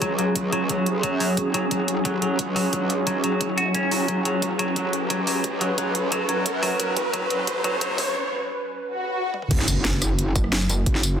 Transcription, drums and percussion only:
0.02 kick, closed hi-hat
0.19 closed hi-hat
0.36 kick, closed hi-hat
0.52 closed hi-hat
0.69 kick, closed hi-hat
0.86 closed hi-hat
1.03 kick, closed hi-hat
1.20 open hi-hat
1.37 kick, closed hi-hat
1.54 closed hi-hat
1.71 kick, closed hi-hat
1.88 closed hi-hat
2.05 kick, closed hi-hat
2.22 closed hi-hat
2.39 kick, closed hi-hat
2.56 open hi-hat
2.73 kick, closed hi-hat
2.90 closed hi-hat
3.07 kick, closed hi-hat
3.24 closed hi-hat
3.41 kick, closed hi-hat
3.58 closed hi-hat
3.75 kick, closed hi-hat
3.91 open hi-hat
4.08 kick, closed hi-hat
4.25 closed hi-hat
4.42 kick, closed hi-hat
4.59 closed hi-hat
4.76 kick, closed hi-hat
4.93 closed hi-hat
5.10 kick, closed hi-hat
5.27 open hi-hat
5.44 kick, closed hi-hat
5.61 closed hi-hat
5.78 kick, closed hi-hat
5.95 closed hi-hat
6.12 kick, closed hi-hat
6.29 closed hi-hat
6.46 kick, closed hi-hat
6.63 open hi-hat
6.80 kick, closed hi-hat
6.97 kick, closed hi-hat
7.13 kick, closed hi-hat
7.30 kick, closed hi-hat
7.47 kick, closed hi-hat
7.64 kick, closed hi-hat
7.81 kick, closed hi-hat
7.98 kick, open hi-hat
9.34 high tom
9.42 mid tom
9.51 kick, closed hi-hat, crash
9.59 snare
9.68 closed hi-hat, tambourine
9.85 snare, closed hi-hat
10.02 cross-stick, closed hi-hat, tambourine
10.19 closed hi-hat
10.36 kick, closed hi-hat, tambourine
10.44 cross-stick
10.53 snare, closed hi-hat
10.61 tambourine
10.69 closed hi-hat, tambourine
10.86 kick, closed hi-hat
10.95 snare
11.03 closed hi-hat, tambourine

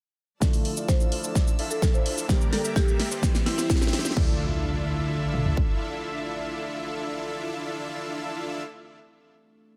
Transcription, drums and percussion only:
0.42 kick, snare, shaker
0.53 open hi-hat, shaker
0.65 open hi-hat
0.77 shaker
0.88 kick, snare, shaker
1.00 shaker
1.12 open hi-hat
1.24 shaker
1.35 kick, snare, shaker
1.47 shaker
1.59 open hi-hat
1.71 shaker
1.82 kick, snare, shaker
1.94 shaker
2.06 open hi-hat
2.18 shaker
2.29 kick, snare, shaker
2.41 shaker
2.53 snare, open hi-hat
2.65 shaker
2.76 kick, snare, shaker
2.88 shaker
3.00 snare, open hi-hat
3.12 shaker
3.23 kick, snare, shaker
3.35 snare, shaker
3.46 snare, open hi-hat
3.58 snare, shaker
3.70 kick, snare, shaker
3.76 snare
3.82 snare, shaker
3.87 snare
3.93 snare, open hi-hat
3.99 snare
4.05 snare, shaker
4.11 snare
4.17 kick, crash
5.34 mid tom
5.46 floor tom
5.57 kick

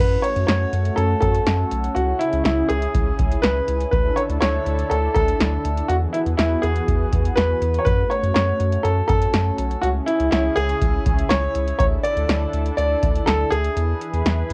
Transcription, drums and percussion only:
0.24 closed hi-hat
0.36 closed hi-hat
0.48 snare, closed hi-hat
0.73 closed hi-hat
0.85 closed hi-hat
0.98 closed hi-hat
1.22 kick, closed hi-hat
1.35 closed hi-hat
1.46 snare, closed hi-hat
1.71 closed hi-hat
1.84 closed hi-hat
1.96 closed hi-hat
2.21 closed hi-hat
2.33 closed hi-hat
2.45 snare, closed hi-hat
2.70 closed hi-hat
2.82 closed hi-hat
2.95 kick, closed hi-hat
3.19 kick, closed hi-hat
3.32 closed hi-hat
3.43 snare, closed hi-hat
3.68 closed hi-hat
3.81 closed hi-hat
3.93 kick, closed hi-hat
4.17 closed hi-hat
4.30 closed hi-hat
4.42 snare, closed hi-hat
4.66 closed hi-hat
4.79 closed hi-hat
4.91 closed hi-hat
5.16 kick, closed hi-hat
5.28 closed hi-hat
5.40 snare, closed hi-hat
5.65 closed hi-hat
5.77 closed hi-hat
5.89 closed hi-hat
6.14 closed hi-hat
6.26 closed hi-hat
6.39 snare, closed hi-hat
6.63 closed hi-hat
6.76 closed hi-hat
6.88 kick, closed hi-hat
7.13 kick, closed hi-hat
7.25 closed hi-hat
7.37 snare, closed hi-hat
7.62 closed hi-hat
7.74 closed hi-hat
7.86 kick, closed hi-hat
8.11 closed hi-hat
8.23 closed hi-hat
8.36 snare, closed hi-hat
8.60 closed hi-hat
8.72 closed hi-hat
8.85 closed hi-hat
9.09 kick, closed hi-hat
9.22 closed hi-hat
9.34 snare, closed hi-hat
9.58 closed hi-hat
9.71 closed hi-hat
9.83 closed hi-hat
10.08 closed hi-hat
10.20 closed hi-hat
10.32 snare, closed hi-hat
10.57 closed hi-hat
10.69 closed hi-hat
10.81 kick, closed hi-hat
11.06 kick, closed hi-hat
11.19 closed hi-hat
11.30 snare, closed hi-hat
11.55 closed hi-hat
11.68 closed hi-hat
11.80 kick, closed hi-hat
12.04 closed hi-hat
12.17 closed hi-hat
12.29 snare, closed hi-hat
12.53 closed hi-hat
12.66 closed hi-hat
12.78 closed hi-hat
13.03 kick, closed hi-hat
13.15 closed hi-hat
13.27 snare, closed hi-hat
13.52 closed hi-hat
13.64 closed hi-hat
13.77 closed hi-hat
14.01 closed hi-hat
14.14 closed hi-hat
14.26 snare, closed hi-hat
14.50 closed hi-hat

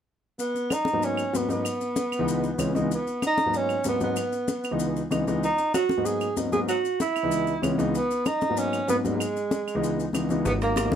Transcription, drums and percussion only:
0.39 high conga, maracas
0.55 high conga, maracas
0.70 high conga, claves, maracas
0.85 high conga, maracas
1.02 high conga, maracas
1.17 high conga, claves, maracas
1.34 high conga, maracas
1.49 high conga, maracas
1.65 high conga, claves, maracas
1.81 high conga, maracas
1.96 high conga, maracas
2.12 high conga, claves, maracas
2.28 high conga, maracas
2.43 high conga, maracas
2.59 high conga, claves, maracas
2.75 high conga, maracas
2.91 high conga, maracas
3.07 high conga, maracas
3.22 high conga, claves, maracas
3.38 high conga, maracas
3.54 high conga, maracas
3.69 high conga, claves, maracas
3.84 high conga, maracas
4.00 high conga, maracas
4.16 high conga, claves, maracas
4.32 high conga, maracas
4.48 high conga, maracas
4.64 high conga, claves, maracas
4.79 high conga, maracas
4.96 high conga, maracas
5.11 high conga, claves, maracas
5.27 high conga, maracas
5.43 high conga, maracas
5.58 high conga, maracas
5.74 high conga, claves, maracas
5.89 high conga, maracas
6.06 high conga, maracas
6.21 high conga, claves, maracas
6.37 high conga, maracas
6.52 high conga, maracas
6.68 high conga, claves, maracas
6.84 high conga, maracas
7.00 high conga, maracas
7.16 high conga, claves, maracas
7.31 high conga, maracas
7.47 high conga, maracas
7.63 high conga, claves, maracas
7.79 high conga, maracas
7.95 high conga, maracas
8.11 high conga, maracas
8.26 high conga, claves, maracas
8.41 high conga, maracas
8.57 high conga, maracas
8.73 high conga, claves, maracas
8.89 high conga, maracas
9.05 high conga, maracas
9.20 high conga, claves, maracas
9.36 high conga, maracas
9.51 high conga, maracas
9.68 high conga, claves, maracas
9.82 high conga, maracas
9.98 high conga, maracas
10.13 high conga, claves, maracas
10.29 high conga, maracas
10.45 high bongo, high conga, maracas
10.61 high bongo, high conga, high timbale, maracas
10.76 high bongo, high conga, high timbale, low timbale, claves, maracas
10.92 high conga

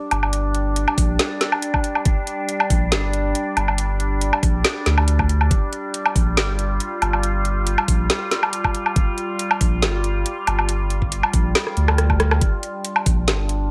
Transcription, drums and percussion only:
0.11 closed hi-hat, low woodblock
0.23 low woodblock
0.33 closed hi-hat
0.55 closed hi-hat
0.76 closed hi-hat
0.88 low woodblock
0.98 kick, open hi-hat
1.19 snare, closed hi-hat
1.41 snare, closed hi-hat
1.52 low woodblock
1.62 closed hi-hat
1.74 kick, low woodblock
1.84 closed hi-hat
1.95 low woodblock
2.05 kick, closed hi-hat
2.27 closed hi-hat
2.49 closed hi-hat
2.60 low woodblock
2.70 kick, open hi-hat
2.92 snare, closed hi-hat
3.13 closed hi-hat
3.35 closed hi-hat
3.57 closed hi-hat, low woodblock
3.68 low woodblock
3.78 closed hi-hat
4.00 closed hi-hat
4.21 closed hi-hat
4.33 low woodblock
4.43 kick, open hi-hat
4.64 snare, closed hi-hat
4.86 snare, closed hi-hat
4.98 low woodblock
5.08 closed hi-hat
5.19 kick, low woodblock
5.29 closed hi-hat
5.41 low woodblock
5.51 kick, closed hi-hat
5.73 closed hi-hat
5.94 closed hi-hat
6.06 low woodblock
6.16 kick, open hi-hat
6.37 snare, closed hi-hat
6.59 closed hi-hat
6.80 closed hi-hat
7.02 closed hi-hat, low woodblock
7.13 low woodblock
7.23 closed hi-hat
7.45 closed hi-hat
7.67 closed hi-hat
7.78 low woodblock
7.88 kick, open hi-hat
8.10 snare, closed hi-hat
8.31 snare, closed hi-hat
8.43 low woodblock
8.53 closed hi-hat
8.64 kick, low woodblock
8.75 closed hi-hat
8.86 low woodblock
8.96 kick, closed hi-hat
9.18 closed hi-hat
9.39 closed hi-hat
9.51 low woodblock
9.61 kick, open hi-hat
9.82 snare, closed hi-hat
10.04 closed hi-hat
10.26 closed hi-hat
10.47 closed hi-hat, low woodblock
10.59 low woodblock
10.69 closed hi-hat
10.90 closed hi-hat
11.02 kick
11.12 closed hi-hat
11.23 low woodblock
11.34 kick, open hi-hat
11.55 cross-stick, snare, closed hi-hat
11.67 cross-stick
11.77 closed hi-hat
11.88 cross-stick, low woodblock
11.98 cross-stick, closed hi-hat
12.10 kick, low woodblock
12.20 cross-stick, closed hi-hat
12.31 cross-stick, low woodblock
12.41 kick, closed hi-hat
12.63 closed hi-hat
12.85 closed hi-hat
12.96 low woodblock
13.06 kick, open hi-hat
13.28 snare, closed hi-hat
13.49 closed hi-hat

